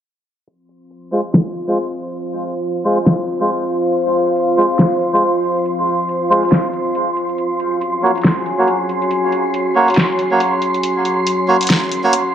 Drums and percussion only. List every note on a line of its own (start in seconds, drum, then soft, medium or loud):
0.47 closed hi-hat medium
0.69 closed hi-hat medium
0.91 closed hi-hat medium
1.25 closed hi-hat medium
1.27 closed hi-hat medium
1.31 snare loud
1.31 closed hi-hat medium
1.34 closed hi-hat medium
1.55 closed hi-hat medium
1.77 closed hi-hat medium
1.99 closed hi-hat medium
2.20 closed hi-hat medium
2.63 closed hi-hat medium
2.97 closed hi-hat soft
2.99 closed hi-hat medium
3.03 snare loud
3.03 closed hi-hat medium
3.06 closed hi-hat medium
3.28 closed hi-hat soft
3.49 closed hi-hat medium
3.71 closed hi-hat medium
3.84 closed hi-hat soft
3.93 closed hi-hat medium
4.14 closed hi-hat medium
4.36 closed hi-hat medium
4.70 closed hi-hat soft
4.72 closed hi-hat medium
4.76 snare loud
4.76 closed hi-hat medium
4.79 closed hi-hat medium
5.01 closed hi-hat soft
5.22 closed hi-hat medium
5.44 closed hi-hat medium
5.56 closed hi-hat soft
5.65 closed hi-hat medium
5.87 closed hi-hat soft
6.09 closed hi-hat medium
6.43 closed hi-hat soft
6.45 closed hi-hat medium
6.49 snare loud
6.49 closed hi-hat medium
6.52 closed hi-hat medium
6.73 closed hi-hat soft
6.95 closed hi-hat medium
7.17 closed hi-hat medium
7.29 closed hi-hat soft
7.38 closed hi-hat medium
7.60 closed hi-hat soft
7.81 closed hi-hat medium
8.15 closed hi-hat soft
8.17 closed hi-hat medium
8.21 snare loud
8.21 closed hi-hat medium
8.24 closed hi-hat medium
8.46 closed hi-hat soft
8.68 closed hi-hat medium
8.89 closed hi-hat medium
9.02 closed hi-hat soft
9.11 closed hi-hat medium
9.32 closed hi-hat medium
9.54 closed hi-hat medium
9.88 closed hi-hat soft
9.90 closed hi-hat medium
9.94 snare loud
9.94 closed hi-hat medium
9.97 closed hi-hat medium
10.19 closed hi-hat soft
10.40 closed hi-hat medium
10.62 closed hi-hat medium
10.74 closed hi-hat soft
10.83 closed hi-hat medium
11.05 closed hi-hat medium
11.27 closed hi-hat medium
11.61 closed hi-hat soft
11.63 closed hi-hat medium
11.67 snare loud
11.67 closed hi-hat medium
11.70 closed hi-hat medium
11.92 closed hi-hat medium
12.13 closed hi-hat medium